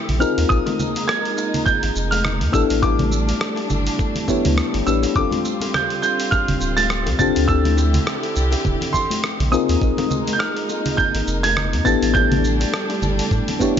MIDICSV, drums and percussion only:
0, 0, Header, 1, 2, 480
1, 0, Start_track
1, 0, Tempo, 582524
1, 410, Time_signature, 4, 2, 24, 8
1, 11369, End_track
2, 0, Start_track
2, 0, Title_t, "Drums"
2, 74, Note_on_c, 9, 46, 43
2, 74, Note_on_c, 9, 64, 69
2, 156, Note_off_c, 9, 46, 0
2, 156, Note_off_c, 9, 64, 0
2, 176, Note_on_c, 9, 82, 82
2, 258, Note_off_c, 9, 82, 0
2, 312, Note_on_c, 9, 46, 56
2, 313, Note_on_c, 9, 60, 53
2, 313, Note_on_c, 9, 82, 44
2, 395, Note_off_c, 9, 46, 0
2, 395, Note_off_c, 9, 82, 0
2, 396, Note_off_c, 9, 60, 0
2, 413, Note_on_c, 9, 36, 127
2, 417, Note_on_c, 9, 82, 36
2, 495, Note_off_c, 9, 36, 0
2, 500, Note_off_c, 9, 82, 0
2, 546, Note_on_c, 9, 60, 72
2, 550, Note_on_c, 9, 46, 30
2, 555, Note_on_c, 9, 63, 92
2, 559, Note_on_c, 9, 64, 91
2, 629, Note_off_c, 9, 60, 0
2, 632, Note_off_c, 9, 46, 0
2, 637, Note_off_c, 9, 63, 0
2, 641, Note_off_c, 9, 64, 0
2, 652, Note_on_c, 9, 63, 59
2, 656, Note_on_c, 9, 64, 75
2, 656, Note_on_c, 9, 82, 81
2, 735, Note_off_c, 9, 63, 0
2, 738, Note_off_c, 9, 64, 0
2, 739, Note_off_c, 9, 82, 0
2, 785, Note_on_c, 9, 63, 63
2, 792, Note_on_c, 9, 46, 51
2, 792, Note_on_c, 9, 82, 43
2, 867, Note_off_c, 9, 63, 0
2, 874, Note_off_c, 9, 46, 0
2, 875, Note_off_c, 9, 82, 0
2, 894, Note_on_c, 9, 60, 54
2, 898, Note_on_c, 9, 37, 117
2, 898, Note_on_c, 9, 82, 39
2, 977, Note_off_c, 9, 60, 0
2, 980, Note_off_c, 9, 37, 0
2, 981, Note_off_c, 9, 82, 0
2, 1034, Note_on_c, 9, 46, 32
2, 1116, Note_off_c, 9, 46, 0
2, 1135, Note_on_c, 9, 82, 85
2, 1136, Note_on_c, 9, 60, 75
2, 1217, Note_off_c, 9, 82, 0
2, 1219, Note_off_c, 9, 60, 0
2, 1272, Note_on_c, 9, 46, 53
2, 1272, Note_on_c, 9, 64, 71
2, 1272, Note_on_c, 9, 82, 46
2, 1354, Note_off_c, 9, 46, 0
2, 1354, Note_off_c, 9, 64, 0
2, 1354, Note_off_c, 9, 82, 0
2, 1371, Note_on_c, 9, 36, 126
2, 1375, Note_on_c, 9, 82, 36
2, 1454, Note_off_c, 9, 36, 0
2, 1457, Note_off_c, 9, 82, 0
2, 1507, Note_on_c, 9, 46, 46
2, 1510, Note_on_c, 9, 60, 49
2, 1590, Note_off_c, 9, 46, 0
2, 1592, Note_off_c, 9, 60, 0
2, 1613, Note_on_c, 9, 82, 81
2, 1696, Note_off_c, 9, 82, 0
2, 1749, Note_on_c, 9, 46, 56
2, 1749, Note_on_c, 9, 60, 72
2, 1749, Note_on_c, 9, 82, 50
2, 1750, Note_on_c, 9, 63, 90
2, 1831, Note_off_c, 9, 46, 0
2, 1832, Note_off_c, 9, 60, 0
2, 1832, Note_off_c, 9, 82, 0
2, 1833, Note_off_c, 9, 63, 0
2, 1851, Note_on_c, 9, 37, 107
2, 1851, Note_on_c, 9, 64, 76
2, 1851, Note_on_c, 9, 82, 38
2, 1933, Note_off_c, 9, 37, 0
2, 1933, Note_off_c, 9, 64, 0
2, 1934, Note_off_c, 9, 82, 0
2, 1984, Note_on_c, 9, 64, 76
2, 1988, Note_on_c, 9, 46, 43
2, 2066, Note_off_c, 9, 64, 0
2, 2070, Note_off_c, 9, 46, 0
2, 2091, Note_on_c, 9, 36, 119
2, 2092, Note_on_c, 9, 82, 78
2, 2096, Note_on_c, 9, 60, 47
2, 2173, Note_off_c, 9, 36, 0
2, 2174, Note_off_c, 9, 82, 0
2, 2179, Note_off_c, 9, 60, 0
2, 2228, Note_on_c, 9, 46, 52
2, 2228, Note_on_c, 9, 82, 44
2, 2310, Note_off_c, 9, 46, 0
2, 2311, Note_off_c, 9, 82, 0
2, 2330, Note_on_c, 9, 36, 125
2, 2330, Note_on_c, 9, 60, 84
2, 2333, Note_on_c, 9, 82, 37
2, 2412, Note_off_c, 9, 60, 0
2, 2413, Note_off_c, 9, 36, 0
2, 2415, Note_off_c, 9, 82, 0
2, 2461, Note_on_c, 9, 63, 89
2, 2466, Note_on_c, 9, 46, 30
2, 2466, Note_on_c, 9, 64, 83
2, 2543, Note_off_c, 9, 63, 0
2, 2549, Note_off_c, 9, 46, 0
2, 2549, Note_off_c, 9, 64, 0
2, 2569, Note_on_c, 9, 63, 61
2, 2571, Note_on_c, 9, 82, 77
2, 2652, Note_off_c, 9, 63, 0
2, 2653, Note_off_c, 9, 82, 0
2, 2705, Note_on_c, 9, 60, 54
2, 2709, Note_on_c, 9, 46, 47
2, 2709, Note_on_c, 9, 63, 67
2, 2709, Note_on_c, 9, 82, 45
2, 2788, Note_off_c, 9, 60, 0
2, 2791, Note_off_c, 9, 46, 0
2, 2791, Note_off_c, 9, 63, 0
2, 2792, Note_off_c, 9, 82, 0
2, 2810, Note_on_c, 9, 37, 107
2, 2810, Note_on_c, 9, 82, 35
2, 2892, Note_off_c, 9, 37, 0
2, 2893, Note_off_c, 9, 82, 0
2, 2936, Note_on_c, 9, 60, 67
2, 2945, Note_on_c, 9, 46, 30
2, 3018, Note_off_c, 9, 60, 0
2, 3027, Note_off_c, 9, 46, 0
2, 3048, Note_on_c, 9, 64, 76
2, 3049, Note_on_c, 9, 82, 83
2, 3131, Note_off_c, 9, 64, 0
2, 3131, Note_off_c, 9, 82, 0
2, 3186, Note_on_c, 9, 46, 55
2, 3186, Note_on_c, 9, 82, 45
2, 3268, Note_off_c, 9, 46, 0
2, 3268, Note_off_c, 9, 82, 0
2, 3284, Note_on_c, 9, 60, 49
2, 3290, Note_on_c, 9, 36, 119
2, 3290, Note_on_c, 9, 82, 34
2, 3367, Note_off_c, 9, 60, 0
2, 3372, Note_off_c, 9, 36, 0
2, 3372, Note_off_c, 9, 82, 0
2, 3422, Note_on_c, 9, 64, 86
2, 3425, Note_on_c, 9, 46, 42
2, 3505, Note_off_c, 9, 64, 0
2, 3508, Note_off_c, 9, 46, 0
2, 3525, Note_on_c, 9, 60, 85
2, 3529, Note_on_c, 9, 82, 80
2, 3530, Note_on_c, 9, 36, 59
2, 3532, Note_on_c, 9, 64, 74
2, 3607, Note_off_c, 9, 60, 0
2, 3612, Note_off_c, 9, 36, 0
2, 3612, Note_off_c, 9, 82, 0
2, 3614, Note_off_c, 9, 64, 0
2, 3665, Note_on_c, 9, 63, 91
2, 3667, Note_on_c, 9, 46, 54
2, 3667, Note_on_c, 9, 64, 78
2, 3667, Note_on_c, 9, 82, 47
2, 3748, Note_off_c, 9, 63, 0
2, 3749, Note_off_c, 9, 46, 0
2, 3749, Note_off_c, 9, 64, 0
2, 3750, Note_off_c, 9, 82, 0
2, 3771, Note_on_c, 9, 37, 101
2, 3771, Note_on_c, 9, 82, 38
2, 3853, Note_off_c, 9, 37, 0
2, 3854, Note_off_c, 9, 82, 0
2, 3905, Note_on_c, 9, 60, 45
2, 3907, Note_on_c, 9, 46, 43
2, 3987, Note_off_c, 9, 60, 0
2, 3989, Note_off_c, 9, 46, 0
2, 4012, Note_on_c, 9, 82, 79
2, 4095, Note_off_c, 9, 82, 0
2, 4142, Note_on_c, 9, 60, 72
2, 4148, Note_on_c, 9, 46, 50
2, 4149, Note_on_c, 9, 82, 46
2, 4225, Note_off_c, 9, 60, 0
2, 4231, Note_off_c, 9, 46, 0
2, 4231, Note_off_c, 9, 82, 0
2, 4249, Note_on_c, 9, 36, 117
2, 4252, Note_on_c, 9, 82, 34
2, 4331, Note_off_c, 9, 36, 0
2, 4334, Note_off_c, 9, 82, 0
2, 4378, Note_on_c, 9, 63, 84
2, 4383, Note_on_c, 9, 60, 44
2, 4387, Note_on_c, 9, 46, 32
2, 4387, Note_on_c, 9, 64, 79
2, 4460, Note_off_c, 9, 63, 0
2, 4465, Note_off_c, 9, 60, 0
2, 4470, Note_off_c, 9, 46, 0
2, 4470, Note_off_c, 9, 64, 0
2, 4490, Note_on_c, 9, 63, 63
2, 4491, Note_on_c, 9, 82, 76
2, 4572, Note_off_c, 9, 63, 0
2, 4573, Note_off_c, 9, 82, 0
2, 4617, Note_on_c, 9, 63, 71
2, 4627, Note_on_c, 9, 46, 48
2, 4627, Note_on_c, 9, 82, 41
2, 4628, Note_on_c, 9, 60, 79
2, 4700, Note_off_c, 9, 63, 0
2, 4709, Note_off_c, 9, 46, 0
2, 4710, Note_off_c, 9, 60, 0
2, 4710, Note_off_c, 9, 82, 0
2, 4732, Note_on_c, 9, 37, 103
2, 4732, Note_on_c, 9, 64, 84
2, 4733, Note_on_c, 9, 82, 38
2, 4815, Note_off_c, 9, 37, 0
2, 4815, Note_off_c, 9, 64, 0
2, 4815, Note_off_c, 9, 82, 0
2, 4865, Note_on_c, 9, 46, 32
2, 4948, Note_off_c, 9, 46, 0
2, 4968, Note_on_c, 9, 60, 43
2, 4969, Note_on_c, 9, 82, 76
2, 5051, Note_off_c, 9, 60, 0
2, 5052, Note_off_c, 9, 82, 0
2, 5106, Note_on_c, 9, 46, 56
2, 5106, Note_on_c, 9, 82, 45
2, 5188, Note_off_c, 9, 46, 0
2, 5189, Note_off_c, 9, 82, 0
2, 5208, Note_on_c, 9, 82, 35
2, 5209, Note_on_c, 9, 36, 126
2, 5209, Note_on_c, 9, 60, 66
2, 5290, Note_off_c, 9, 82, 0
2, 5291, Note_off_c, 9, 60, 0
2, 5292, Note_off_c, 9, 36, 0
2, 5343, Note_on_c, 9, 46, 43
2, 5343, Note_on_c, 9, 64, 83
2, 5425, Note_off_c, 9, 46, 0
2, 5425, Note_off_c, 9, 64, 0
2, 5447, Note_on_c, 9, 82, 79
2, 5529, Note_off_c, 9, 82, 0
2, 5580, Note_on_c, 9, 60, 53
2, 5584, Note_on_c, 9, 46, 57
2, 5584, Note_on_c, 9, 82, 46
2, 5586, Note_on_c, 9, 63, 86
2, 5662, Note_off_c, 9, 60, 0
2, 5666, Note_off_c, 9, 46, 0
2, 5667, Note_off_c, 9, 82, 0
2, 5669, Note_off_c, 9, 63, 0
2, 5687, Note_on_c, 9, 37, 94
2, 5687, Note_on_c, 9, 82, 35
2, 5769, Note_off_c, 9, 37, 0
2, 5769, Note_off_c, 9, 82, 0
2, 5820, Note_on_c, 9, 60, 78
2, 5824, Note_on_c, 9, 46, 42
2, 5827, Note_on_c, 9, 64, 73
2, 5902, Note_off_c, 9, 60, 0
2, 5906, Note_off_c, 9, 46, 0
2, 5909, Note_off_c, 9, 64, 0
2, 5928, Note_on_c, 9, 36, 101
2, 5929, Note_on_c, 9, 64, 83
2, 5929, Note_on_c, 9, 82, 76
2, 6010, Note_off_c, 9, 36, 0
2, 6011, Note_off_c, 9, 64, 0
2, 6011, Note_off_c, 9, 82, 0
2, 6066, Note_on_c, 9, 46, 52
2, 6066, Note_on_c, 9, 82, 43
2, 6148, Note_off_c, 9, 46, 0
2, 6149, Note_off_c, 9, 82, 0
2, 6166, Note_on_c, 9, 60, 49
2, 6168, Note_on_c, 9, 36, 115
2, 6171, Note_on_c, 9, 82, 32
2, 6249, Note_off_c, 9, 60, 0
2, 6251, Note_off_c, 9, 36, 0
2, 6254, Note_off_c, 9, 82, 0
2, 6301, Note_on_c, 9, 64, 74
2, 6306, Note_on_c, 9, 46, 31
2, 6306, Note_on_c, 9, 63, 88
2, 6383, Note_off_c, 9, 64, 0
2, 6389, Note_off_c, 9, 46, 0
2, 6389, Note_off_c, 9, 63, 0
2, 6405, Note_on_c, 9, 63, 56
2, 6406, Note_on_c, 9, 60, 78
2, 6409, Note_on_c, 9, 82, 72
2, 6487, Note_off_c, 9, 63, 0
2, 6489, Note_off_c, 9, 60, 0
2, 6491, Note_off_c, 9, 82, 0
2, 6535, Note_on_c, 9, 63, 64
2, 6544, Note_on_c, 9, 46, 53
2, 6544, Note_on_c, 9, 64, 75
2, 6545, Note_on_c, 9, 82, 39
2, 6618, Note_off_c, 9, 63, 0
2, 6627, Note_off_c, 9, 46, 0
2, 6627, Note_off_c, 9, 64, 0
2, 6627, Note_off_c, 9, 82, 0
2, 6650, Note_on_c, 9, 37, 101
2, 6650, Note_on_c, 9, 82, 37
2, 6732, Note_off_c, 9, 37, 0
2, 6732, Note_off_c, 9, 82, 0
2, 6782, Note_on_c, 9, 60, 51
2, 6785, Note_on_c, 9, 46, 33
2, 6864, Note_off_c, 9, 60, 0
2, 6867, Note_off_c, 9, 46, 0
2, 6889, Note_on_c, 9, 82, 75
2, 6972, Note_off_c, 9, 82, 0
2, 7019, Note_on_c, 9, 60, 82
2, 7025, Note_on_c, 9, 46, 54
2, 7025, Note_on_c, 9, 82, 42
2, 7101, Note_off_c, 9, 60, 0
2, 7107, Note_off_c, 9, 46, 0
2, 7107, Note_off_c, 9, 82, 0
2, 7127, Note_on_c, 9, 36, 110
2, 7131, Note_on_c, 9, 64, 87
2, 7131, Note_on_c, 9, 82, 31
2, 7210, Note_off_c, 9, 36, 0
2, 7213, Note_off_c, 9, 64, 0
2, 7213, Note_off_c, 9, 82, 0
2, 7261, Note_on_c, 9, 64, 95
2, 7267, Note_on_c, 9, 46, 46
2, 7344, Note_off_c, 9, 64, 0
2, 7350, Note_off_c, 9, 46, 0
2, 7367, Note_on_c, 9, 64, 79
2, 7368, Note_on_c, 9, 36, 53
2, 7368, Note_on_c, 9, 60, 62
2, 7371, Note_on_c, 9, 82, 72
2, 7450, Note_off_c, 9, 36, 0
2, 7450, Note_off_c, 9, 64, 0
2, 7451, Note_off_c, 9, 60, 0
2, 7454, Note_off_c, 9, 82, 0
2, 7503, Note_on_c, 9, 63, 84
2, 7509, Note_on_c, 9, 46, 58
2, 7510, Note_on_c, 9, 82, 43
2, 7585, Note_off_c, 9, 63, 0
2, 7592, Note_off_c, 9, 46, 0
2, 7592, Note_off_c, 9, 82, 0
2, 7610, Note_on_c, 9, 60, 72
2, 7611, Note_on_c, 9, 37, 105
2, 7612, Note_on_c, 9, 82, 35
2, 7693, Note_off_c, 9, 60, 0
2, 7694, Note_off_c, 9, 37, 0
2, 7694, Note_off_c, 9, 82, 0
2, 7749, Note_on_c, 9, 46, 47
2, 7749, Note_on_c, 9, 64, 81
2, 7831, Note_off_c, 9, 46, 0
2, 7831, Note_off_c, 9, 64, 0
2, 7851, Note_on_c, 9, 82, 76
2, 7934, Note_off_c, 9, 82, 0
2, 7979, Note_on_c, 9, 60, 50
2, 7988, Note_on_c, 9, 46, 52
2, 7988, Note_on_c, 9, 82, 41
2, 8062, Note_off_c, 9, 60, 0
2, 8070, Note_off_c, 9, 46, 0
2, 8071, Note_off_c, 9, 82, 0
2, 8088, Note_on_c, 9, 36, 110
2, 8090, Note_on_c, 9, 82, 33
2, 8170, Note_off_c, 9, 36, 0
2, 8173, Note_off_c, 9, 82, 0
2, 8217, Note_on_c, 9, 63, 83
2, 8224, Note_on_c, 9, 64, 90
2, 8225, Note_on_c, 9, 46, 33
2, 8226, Note_on_c, 9, 60, 85
2, 8299, Note_off_c, 9, 63, 0
2, 8306, Note_off_c, 9, 64, 0
2, 8308, Note_off_c, 9, 46, 0
2, 8308, Note_off_c, 9, 60, 0
2, 8328, Note_on_c, 9, 63, 59
2, 8330, Note_on_c, 9, 64, 85
2, 8330, Note_on_c, 9, 82, 76
2, 8410, Note_off_c, 9, 63, 0
2, 8412, Note_off_c, 9, 64, 0
2, 8413, Note_off_c, 9, 82, 0
2, 8467, Note_on_c, 9, 46, 53
2, 8467, Note_on_c, 9, 82, 40
2, 8470, Note_on_c, 9, 63, 69
2, 8549, Note_off_c, 9, 46, 0
2, 8550, Note_off_c, 9, 82, 0
2, 8552, Note_off_c, 9, 63, 0
2, 8570, Note_on_c, 9, 37, 113
2, 8570, Note_on_c, 9, 82, 34
2, 8576, Note_on_c, 9, 60, 60
2, 8652, Note_off_c, 9, 37, 0
2, 8653, Note_off_c, 9, 82, 0
2, 8659, Note_off_c, 9, 60, 0
2, 8706, Note_on_c, 9, 46, 34
2, 8789, Note_off_c, 9, 46, 0
2, 8810, Note_on_c, 9, 82, 74
2, 8814, Note_on_c, 9, 60, 77
2, 8893, Note_off_c, 9, 82, 0
2, 8896, Note_off_c, 9, 60, 0
2, 8947, Note_on_c, 9, 46, 56
2, 8947, Note_on_c, 9, 64, 84
2, 8947, Note_on_c, 9, 82, 42
2, 9029, Note_off_c, 9, 46, 0
2, 9029, Note_off_c, 9, 64, 0
2, 9029, Note_off_c, 9, 82, 0
2, 9049, Note_on_c, 9, 36, 119
2, 9052, Note_on_c, 9, 82, 32
2, 9131, Note_off_c, 9, 36, 0
2, 9135, Note_off_c, 9, 82, 0
2, 9185, Note_on_c, 9, 46, 48
2, 9195, Note_on_c, 9, 60, 50
2, 9267, Note_off_c, 9, 46, 0
2, 9277, Note_off_c, 9, 60, 0
2, 9291, Note_on_c, 9, 82, 74
2, 9373, Note_off_c, 9, 82, 0
2, 9426, Note_on_c, 9, 46, 62
2, 9427, Note_on_c, 9, 60, 78
2, 9427, Note_on_c, 9, 82, 44
2, 9435, Note_on_c, 9, 63, 89
2, 9509, Note_off_c, 9, 46, 0
2, 9509, Note_off_c, 9, 60, 0
2, 9509, Note_off_c, 9, 82, 0
2, 9517, Note_off_c, 9, 63, 0
2, 9532, Note_on_c, 9, 37, 102
2, 9532, Note_on_c, 9, 64, 82
2, 9532, Note_on_c, 9, 82, 34
2, 9614, Note_off_c, 9, 37, 0
2, 9614, Note_off_c, 9, 64, 0
2, 9614, Note_off_c, 9, 82, 0
2, 9669, Note_on_c, 9, 46, 47
2, 9673, Note_on_c, 9, 64, 86
2, 9751, Note_off_c, 9, 46, 0
2, 9755, Note_off_c, 9, 64, 0
2, 9770, Note_on_c, 9, 36, 101
2, 9772, Note_on_c, 9, 60, 54
2, 9774, Note_on_c, 9, 82, 80
2, 9852, Note_off_c, 9, 36, 0
2, 9855, Note_off_c, 9, 60, 0
2, 9856, Note_off_c, 9, 82, 0
2, 9909, Note_on_c, 9, 46, 55
2, 9909, Note_on_c, 9, 82, 42
2, 9991, Note_off_c, 9, 46, 0
2, 9992, Note_off_c, 9, 82, 0
2, 10010, Note_on_c, 9, 36, 112
2, 10014, Note_on_c, 9, 60, 86
2, 10014, Note_on_c, 9, 82, 33
2, 10092, Note_off_c, 9, 36, 0
2, 10096, Note_off_c, 9, 60, 0
2, 10096, Note_off_c, 9, 82, 0
2, 10149, Note_on_c, 9, 46, 35
2, 10149, Note_on_c, 9, 64, 85
2, 10151, Note_on_c, 9, 63, 89
2, 10156, Note_off_c, 9, 64, 0
2, 10156, Note_on_c, 9, 64, 97
2, 10231, Note_off_c, 9, 46, 0
2, 10234, Note_off_c, 9, 63, 0
2, 10238, Note_off_c, 9, 64, 0
2, 10254, Note_on_c, 9, 82, 75
2, 10256, Note_on_c, 9, 63, 56
2, 10337, Note_off_c, 9, 82, 0
2, 10338, Note_off_c, 9, 63, 0
2, 10386, Note_on_c, 9, 60, 65
2, 10388, Note_on_c, 9, 63, 61
2, 10390, Note_on_c, 9, 46, 52
2, 10390, Note_on_c, 9, 82, 39
2, 10468, Note_off_c, 9, 60, 0
2, 10471, Note_off_c, 9, 63, 0
2, 10472, Note_off_c, 9, 46, 0
2, 10473, Note_off_c, 9, 82, 0
2, 10495, Note_on_c, 9, 37, 112
2, 10495, Note_on_c, 9, 82, 36
2, 10577, Note_off_c, 9, 37, 0
2, 10577, Note_off_c, 9, 82, 0
2, 10628, Note_on_c, 9, 60, 75
2, 10629, Note_on_c, 9, 46, 34
2, 10711, Note_off_c, 9, 46, 0
2, 10711, Note_off_c, 9, 60, 0
2, 10732, Note_on_c, 9, 64, 81
2, 10732, Note_on_c, 9, 82, 78
2, 10814, Note_off_c, 9, 64, 0
2, 10815, Note_off_c, 9, 82, 0
2, 10870, Note_on_c, 9, 46, 63
2, 10870, Note_on_c, 9, 82, 42
2, 10952, Note_off_c, 9, 46, 0
2, 10952, Note_off_c, 9, 82, 0
2, 10967, Note_on_c, 9, 60, 51
2, 10970, Note_on_c, 9, 36, 126
2, 10972, Note_on_c, 9, 82, 32
2, 11049, Note_off_c, 9, 60, 0
2, 11052, Note_off_c, 9, 36, 0
2, 11055, Note_off_c, 9, 82, 0
2, 11108, Note_on_c, 9, 46, 51
2, 11112, Note_on_c, 9, 64, 84
2, 11191, Note_off_c, 9, 46, 0
2, 11194, Note_off_c, 9, 64, 0
2, 11210, Note_on_c, 9, 36, 57
2, 11213, Note_on_c, 9, 82, 78
2, 11214, Note_on_c, 9, 64, 88
2, 11215, Note_on_c, 9, 60, 89
2, 11293, Note_off_c, 9, 36, 0
2, 11295, Note_off_c, 9, 82, 0
2, 11296, Note_off_c, 9, 64, 0
2, 11298, Note_off_c, 9, 60, 0
2, 11369, End_track
0, 0, End_of_file